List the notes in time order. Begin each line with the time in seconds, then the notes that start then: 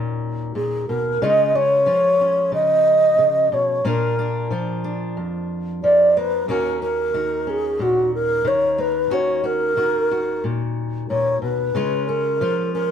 Already playing: D#2 A#2 D#3 A#3 C#4 F#4
0.55 A#2 G#4
0.88 B2 A#4
1.22 C#3 G#3 C#4 F4 D#5
1.55 C#4 C#5
1.86 F3 F4
2.21 C#4
2.52 C#3 D#5
3.18 C#3
3.52 B2 C#5
3.85 A#2 A#3 D4 F4 A#4
4.19 D4
4.51 F3 F4
4.84 D4
5.17 F2
5.83 F3 D5
6.17 A#3 B4
6.48 D#2 A#3 C#4 F#4 A#4
6.82 C#4 A#4
7.14 D#3 F#4
7.47 C#4 G#4
7.79 A#2 F#4
8.14 A#4
8.45 D#3 C#5
8.78 A#3 B4
9.10 D#2 C#4 F#4 C#5
9.44 F#4 A#4
9.77 D#3 F#4
10.11 F#4
10.44 A#2
11.10 A#2 C#5
11.42 B2 B4
11.75 C#3 G#3 C#4 F4
12.08 C#4 A#4
12.41 F3 F4
12.74 C#4 A#4